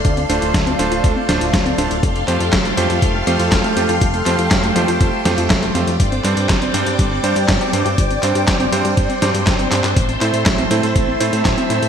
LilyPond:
<<
  \new Staff \with { instrumentName = "String machine" } { \time 4/4 \key f \lydian \tempo 4 = 121 << { <d'' f'' c'''>1 | <g'' c'''>1~ | <g'' c'''>1 | <d'' g'' d'''>1~ |
<d'' g'' d'''>1 | <e'' a'' e'''>1 | } \\ { a'1 | a'1~ | a'1 | c''1~ |
c''1~ | c''1 | } >> }
  \new Staff \with { instrumentName = "Electric grand piano" } { \time 4/4 \key f \lydian r8 <a d' f' c''>4 <a d' f' c''>4 <a d' f' c''>4 <a d' f' c''>8 | r8 <a f' g' c''>4 <a f' g' c''>4 <a f' g' c''>4 <a f' g' c''>8 | r8 <a f' g' c''>4 <a f' g' c''>4 <a f' g' c''>4 <a f' g' c''>8 | r8 <g c' d' c''>4 <g c' d' c''>4 <g c' d' c''>4 <g c' d' c''>8 |
r8 <g c' d' c''>4 <g c' d' c''>4 <g c' d' c''>4 <g c' d' c''>8 | r8 <a c' e' c''>4 <a c' e' c''>4 <a c' e' c''>4 <a c' e' c''>8 | }
  \new Staff \with { instrumentName = "Synth arpeggio sound" } { \time 4/4 \key f \lydian a16 c'16 d'16 f'16 a16 c'16 d'16 f'16 a16 c'16 d'16 f'16 a16 c'16 d'16 f'16 | g16 a16 c'16 f'16 g16 a16 c'16 f'16 g16 a16 c'16 f'16 g16 a16 c'16 f'16 | g16 a16 c'16 f'16 g16 a16 c'16 f'16 g16 a16 c'16 f'16 g16 a16 c'16 f'16 | g16 c'16 d'16 g'16 g16 c'16 d'16 g'16 g16 c'16 d'16 g'16 g16 c'16 d'16 g'16 |
g16 c'16 d'16 g'16 g16 c'16 d'16 g'16 g16 c'16 d'16 g'16 g16 c'16 d'16 g'16 | a16 c'16 e'16 a'16 a16 c'16 e'16 a'16 a16 c'16 e'16 a'16 a16 c'16 e'16 a'16 | }
  \new Staff \with { instrumentName = "Analog synth bass" } { \clef bass \time 4/4 \key f \lydian d,8 d,,16 d,,16 d,8 d,,16 d,,16 d,16 r16 d,,16 d,,16 d,8 d,,16 d,,16 | f,,8 f,16 f,16 f,,8 f,16 f,16 f,,8 f,16 f,16 f,,16 r16 f,16 f,16 | f,,8 f,16 f,16 f,,8 f,16 f,16 f,,16 r16 f,16 f,16 f,,8 f,16 f,16 | g,,8 g,16 g,16 g,,8 g,16 g,16 g,,8 g,16 g,16 g,,16 r16 g,16 g,16 |
g,,8 g,16 g,16 g,,8 g,16 g,16 g,,16 r16 g,16 g,16 g,,8 g,16 g,16 | a,,8 a,16 a,16 a,,8 a,16 a,16 a,,8 a,16 a,16 a,,16 r16 a,16 a,16 | }
  \new DrumStaff \with { instrumentName = "Drums" } \drummode { \time 4/4 <hh bd>16 hh16 hh16 hh16 <hh bd sn>16 hh16 hh16 hh16 <hh bd>8 <hh sn>16 hh16 <hh bd sn>16 hh16 hh16 hh16 | <hh bd>16 hh16 <hc hh>16 hh16 <hc hh bd sn>16 hh16 hh16 hh16 <hh bd>8 hh16 hh16 <hc hh bd sn>16 hh16 hh16 hh16 | <hh bd>16 hh16 <hc hh>16 hh16 <hc hh bd sn>16 hh16 hh16 hh16 <hh bd>8 <hh sn>16 hh16 <hc hh bd sn>16 hh16 hh16 hh16 | <hh bd>16 hh16 <hc hh>16 hh16 <hc hh bd sn>16 hh16 hh16 hh16 <hh bd>8 hh16 hh16 <hc hh bd sn>16 hh16 hh16 hh16 |
<hh bd>16 hh16 <hc hh>16 hh16 <hc hh bd sn>16 hh16 hh16 hh16 <hh bd>16 hh16 <hh sn>16 hh16 <hc hh bd sn>16 hh16 <hc hh>16 <hc hh>16 | <hh bd>16 hh16 <hc hh>16 hh16 <hc hh bd sn>16 hh16 hh16 hh16 <hh bd>8 hh16 hh16 <hc hh bd sn>16 hh16 hh16 hh16 | }
>>